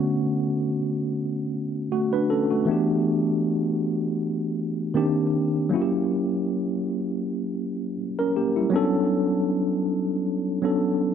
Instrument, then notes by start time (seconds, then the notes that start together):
tine electric piano
Already playing: D3 A3 B3 C#4 F#4
1.92 A3 F#4
2.13 D4 B4
2.30 C#4 A4
2.50 A3 F#4
2.65 E3 A3 B3
2.70 D4 G4
4.94 D#3 A#3 C4 D4 G4
5.69 F#3 A#3 C#4
5.74 E4 F#4
5.82 G4
8.19 C#4 A#4
8.37 A#3 G4
8.56 G3 E4
8.70 F#3 B3 C#4
8.75 D4 A4
10.62 F#3 B3 C#4 D4 A4